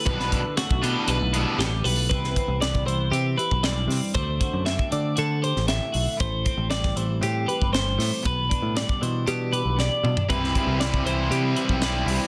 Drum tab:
HH |x-x-x-x-x-x-x-o-|x-x-x-x-x-x-x-o-|x-x-x-x-x-x-x-o-|x-x-x-x-x-x-x-o-|
SD |-o--o-------o---|-o--o-------o-o-|----o------oo---|----oo------o-o-|
T2 |----------------|----------------|----------------|----------------|
FT |----------------|----------------|----------------|----------------|
BD |o-o--o----------|o-o--o-----o----|o-o--o----------|o-o--o-----o----|

HH |x-x-x-x-x-x-----|x-x-x-x-x-x-x-o-|
SD |----o-------o---|-o--o-------o---|
T2 |--------------o-|----------------|
FT |---------------o|----------------|
BD |o-o--o----------|o-o--o-----o----|